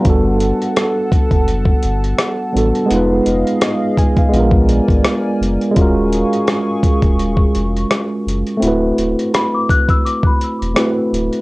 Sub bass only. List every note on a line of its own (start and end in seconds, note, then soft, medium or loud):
0.05 0.53 G1 loud
1.31 1.75 F#1 medium
1.84 2.14 G1 medium
2.55 2.72 A1 medium
2.90 3.21 F1 loud
3.26 3.44 F1 medium
4.33 4.81 A#1 loud
4.89 5.02 G#1 medium
5.41 5.58 F#1 medium
5.77 6.24 D#1 loud
7.03 7.46 D#1 medium
7.55 7.85 F1 medium
8.27 8.44 F#1 medium
8.62 8.92 D1 loud
8.98 9.15 D1 medium
10.61 10.74 E1 medium
11.12 11.30 D1 medium